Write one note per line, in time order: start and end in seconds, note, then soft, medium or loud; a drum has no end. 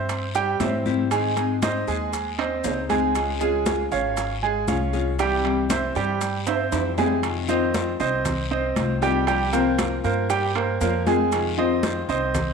0.00 0.56 G2 loud
0.00 0.25 C4 medium
0.00 0.25 C5 medium
0.00 0.26 E5 medium
0.09 muted nylon-string guitar stroke medium
0.09 high conga soft
0.09 high timbale medium
0.09 long guiro medium
0.09 maracas medium
0.35 0.56 G3 medium
0.35 0.56 G4 medium
0.35 0.56 G5 medium
0.35 high conga soft
0.35 maracas medium
0.60 1.81 G#2 medium
0.60 0.84 E3 medium
0.60 0.85 G3 medium
0.60 1.02 C4 medium
0.60 0.85 C4 medium
0.60 0.85 E4 medium
0.60 1.02 C5 medium
0.60 1.02 E5 medium
0.60 high conga medium
0.60 high timbale medium
0.60 low timbale medium
0.60 short guiro medium
0.60 maracas medium
0.86 1.11 E3 medium
0.86 1.11 G3 medium
0.86 1.10 C4 medium
0.86 1.10 E4 medium
0.86 high conga medium
0.86 short guiro medium
0.86 maracas soft
1.11 1.35 D#3 medium
1.11 1.53 G#3 medium
1.11 1.36 G#3 medium
1.11 1.36 C4 medium
1.11 1.36 D#4 medium
1.11 1.53 G#4 medium
1.11 1.35 G#4 medium
1.11 1.53 G#5 medium
1.11 high conga soft
1.11 high timbale medium
1.11 long guiro medium
1.11 maracas medium
1.36 1.61 G#3 medium
1.36 1.61 C4 medium
1.36 1.61 D#4 medium
1.36 1.61 G#4 medium
1.36 high conga soft
1.36 high timbale medium
1.36 maracas medium
1.62 2.12 G#3 soft
1.62 2.12 C4 medium
1.62 1.83 C4 medium
1.62 2.12 D#4 soft
1.62 2.12 G#4 medium
1.62 1.83 C5 medium
1.62 1.84 D#5 medium
1.62 high conga loud
1.62 high timbale medium
1.62 short guiro medium
1.62 maracas medium
1.87 2.60 D#2 medium
1.87 2.29 G#3 medium
1.87 2.30 G#4 medium
1.87 2.30 G#5 medium
1.87 high conga soft
1.87 short guiro medium
1.87 maracas soft
2.13 muted nylon-string guitar stroke medium
2.13 high conga soft
2.13 high timbale medium
2.13 long guiro medium
2.13 maracas medium
2.38 2.80 C4 medium
2.38 2.80 C5 medium
2.38 2.81 D#5 medium
2.38 high conga soft
2.38 high timbale medium
2.64 3.85 C#2 medium
2.64 2.88 G#3 medium
2.64 2.89 C4 medium
2.64 2.89 D#4 medium
2.64 2.89 G#4 medium
2.64 high conga soft
2.64 low timbale medium
2.64 short guiro medium
2.64 maracas medium
2.89 3.31 G#3 medium
2.89 3.15 G#3 medium
2.89 3.15 C4 medium
2.89 3.14 D#4 medium
2.89 3.31 G#4 medium
2.89 3.14 G#4 medium
2.89 3.32 G#5 medium
2.89 high conga medium
2.89 high timbale medium
2.89 short guiro medium
2.89 maracas soft
3.15 3.40 C#3 medium
3.15 3.40 G#3 medium
3.15 3.40 C#4 medium
3.15 3.40 F4 medium
3.15 3.40 G#4 medium
3.15 high conga soft
3.15 high timbale medium
3.15 long guiro medium
3.15 maracas medium
3.40 3.82 G#3 medium
3.40 3.65 G#3 medium
3.40 3.65 C#4 medium
3.40 3.65 F4 medium
3.40 3.82 G#4 medium
3.40 3.65 G#4 medium
3.40 3.83 G#5 medium
3.40 high conga soft
3.40 maracas medium
3.66 4.16 G#3 soft
3.66 4.16 C#4 soft
3.66 4.17 F4 medium
3.66 4.17 G#4 medium
3.66 high conga loud
3.66 high timbale medium
3.66 short guiro medium
3.66 maracas medium
3.91 4.64 G#1 medium
3.91 4.33 C#4 medium
3.91 4.33 C#5 medium
3.91 4.34 F5 medium
3.91 high conga soft
3.91 short guiro medium
3.91 maracas soft
4.17 muted nylon-string guitar stroke medium
4.17 high conga soft
4.17 high timbale medium
4.17 long guiro medium
4.17 maracas medium
4.43 4.64 G#3 medium
4.43 4.64 G#4 medium
4.43 4.64 G#5 medium
4.43 high conga soft
4.68 5.89 C2 medium
4.68 4.92 G#3 medium
4.68 5.10 C#4 medium
4.68 4.93 C#4 medium
4.68 4.93 F4 medium
4.68 4.92 G#4 medium
4.68 5.10 C#5 medium
4.68 5.10 F5 medium
4.68 high conga medium
4.68 high timbale medium
4.68 short guiro medium
4.68 maracas medium
4.93 5.19 G#3 medium
4.93 5.18 C#4 medium
4.93 5.18 F4 medium
4.93 5.18 G#4 medium
4.93 short guiro medium
4.93 maracas soft
5.18 5.43 C3 medium
5.18 5.44 E3 medium
5.18 5.44 G3 medium
5.18 5.61 G3 medium
5.18 5.44 C4 medium
5.18 5.43 E4 medium
5.18 5.61 G4 medium
5.18 5.62 G5 medium
5.18 high conga soft
5.18 high timbale medium
5.18 long guiro medium
5.18 maracas medium
5.44 5.69 E3 soft
5.44 5.69 G3 medium
5.44 5.69 C4 medium
5.44 5.69 E4 medium
5.44 high conga soft
5.44 high timbale medium
5.70 6.20 E3 soft
5.70 6.20 G3 medium
5.70 5.91 C4 medium
5.70 6.20 C4 medium
5.70 6.20 E4 medium
5.70 5.91 C5 medium
5.70 5.91 E5 medium
5.70 high conga loud
5.70 high timbale medium
5.70 short guiro medium
5.70 maracas medium
5.95 6.68 G2 medium
5.95 6.38 G3 medium
5.95 6.38 G4 medium
5.95 6.38 G5 medium
5.95 high conga soft
5.95 short guiro medium
5.95 maracas soft
6.21 muted nylon-string guitar stroke medium
6.21 high conga soft
6.21 high timbale medium
6.21 long guiro medium
6.21 maracas medium
6.47 6.89 C4 medium
6.47 6.89 C5 medium
6.47 6.89 E5 medium
6.47 high conga soft
6.47 high timbale medium
6.47 maracas medium
6.72 7.93 F2 loud
6.72 6.97 E3 medium
6.72 6.97 G3 medium
6.72 6.97 C4 medium
6.72 6.96 E4 medium
6.72 high conga soft
6.72 high timbale medium
6.72 short guiro medium
6.72 maracas medium
6.98 7.23 E3 medium
6.98 7.23 G3 medium
6.98 7.19 G#3 medium
6.98 7.22 C4 medium
6.98 7.22 E4 medium
6.98 7.19 G#4 medium
6.98 7.19 G#5 medium
6.98 high conga medium
6.98 low timbale medium
6.98 short guiro medium
6.98 maracas soft
7.23 7.47 C3 medium
7.23 7.48 D#3 medium
7.23 7.48 G#3 medium
7.23 7.48 C4 medium
7.23 7.47 F4 medium
7.23 high conga soft
7.23 high timbale loud
7.23 long guiro medium
7.23 maracas medium
7.48 7.73 D#3 medium
7.48 7.73 G#3 medium
7.48 7.91 C4 medium
7.48 7.73 C4 medium
7.48 7.73 F4 medium
7.48 7.91 C5 medium
7.48 7.91 D#5 medium
7.48 high conga soft
7.48 maracas medium
7.74 8.24 G#3 soft
7.74 8.24 C4 medium
7.74 8.25 F4 medium
7.74 high conga loud
7.74 high timbale medium
7.74 short guiro medium
7.74 maracas medium
8.00 8.73 C2 loud
8.00 8.42 C4 medium
8.00 8.42 C5 medium
8.00 8.42 D#5 medium
8.00 high conga soft
8.00 short guiro medium
8.00 maracas soft
8.25 muted nylon-string guitar stroke medium
8.25 high conga soft
8.25 low conga medium
8.25 high timbale medium
8.25 long guiro medium
8.25 maracas medium
8.51 8.93 C4 medium
8.51 8.93 C5 medium
8.51 8.93 D#5 medium
8.51 high conga soft
8.76 9.98 C2 medium
8.76 9.01 D#3 medium
8.76 9.01 G#3 medium
8.76 9.01 C4 medium
8.76 9.00 F4 medium
8.76 high conga medium
8.76 high timbale medium
8.76 short guiro medium
8.76 maracas medium
9.01 9.27 D#3 medium
9.01 9.23 G3 medium
9.01 9.27 G#3 medium
9.01 9.27 C4 medium
9.01 9.26 F4 medium
9.01 9.23 G4 medium
9.01 9.23 G5 medium
9.01 short guiro medium
9.01 maracas soft
9.27 9.52 C3 medium
9.27 9.52 F3 medium
9.27 9.48 G3 medium
9.27 9.52 A#3 medium
9.27 9.52 C4 medium
9.27 9.51 F4 medium
9.27 9.49 G4 medium
9.27 9.49 G5 medium
9.27 high conga soft
9.27 high timbale medium
9.27 long guiro medium
9.27 maracas medium
9.52 9.77 F3 medium
9.52 9.95 A#3 medium
9.52 9.78 A#3 medium
9.52 9.78 C4 medium
9.52 9.77 F4 medium
9.52 9.95 A#4 medium
9.52 9.95 C5 medium
9.52 high conga soft
9.52 high timbale medium
9.52 maracas medium
9.78 10.29 F3 soft
9.78 10.29 A#3 medium
9.78 10.29 C4 medium
9.78 10.29 F4 medium
9.78 high conga loud
9.78 high timbale loud
9.78 short guiro medium
9.78 maracas medium
10.04 10.77 G2 loud
10.04 10.25 A#3 medium
10.04 10.25 A#4 medium
10.04 10.26 C5 medium
10.04 high conga soft
10.04 short guiro medium
10.04 maracas soft
10.30 10.51 G3 medium
10.30 10.51 G4 medium
10.30 10.51 G5 medium
10.30 muted nylon-string guitar stroke medium
10.30 high conga soft
10.30 high timbale medium
10.30 long guiro medium
10.30 maracas medium
10.55 10.76 A#3 medium
10.55 10.76 A#4 medium
10.55 10.77 C5 medium
10.55 high conga soft
10.55 high timbale medium
10.81 12.02 F2 loud
10.81 11.05 F3 medium
10.81 11.02 A#3 medium
10.81 11.06 A#3 medium
10.81 11.06 C4 medium
10.81 11.05 F4 medium
10.81 11.02 A#4 medium
10.81 11.02 C5 medium
10.81 high conga soft
10.81 low timbale medium
10.81 short guiro medium
10.81 maracas medium
11.06 11.32 F3 medium
11.06 11.48 G#3 medium
11.06 11.32 A#3 medium
11.06 11.31 C4 medium
11.06 11.31 F4 medium
11.06 11.49 G#4 medium
11.06 11.49 G#5 medium
11.06 high conga medium
11.06 high timbale medium
11.06 short guiro medium
11.06 maracas soft
11.32 11.57 C3 medium
11.32 11.57 D#3 medium
11.32 11.57 G#3 medium
11.32 11.57 C4 medium
11.32 11.56 F4 medium
11.32 high conga soft
11.32 high timbale medium
11.32 long guiro medium
11.32 maracas medium
11.58 11.82 D#3 medium
11.58 11.83 G#3 medium
11.58 12.00 C4 medium
11.58 11.82 C4 medium
11.58 11.82 F4 medium
11.58 12.00 C5 medium
11.58 12.00 D#5 medium
11.58 high conga soft
11.83 12.33 D#3 soft
11.83 12.34 G#3 soft
11.83 12.34 C4 medium
11.83 12.34 F4 medium
11.83 high conga loud
11.83 high timbale medium
11.83 short guiro medium
11.83 maracas medium
12.09 12.53 C2 medium
12.09 12.51 C4 medium
12.09 12.51 C5 medium
12.09 12.51 D#5 medium
12.09 high conga soft
12.09 short guiro medium
12.09 maracas soft
12.35 muted nylon-string guitar stroke medium
12.35 high conga soft
12.35 low conga loud
12.35 high timbale medium
12.35 long guiro medium
12.35 maracas medium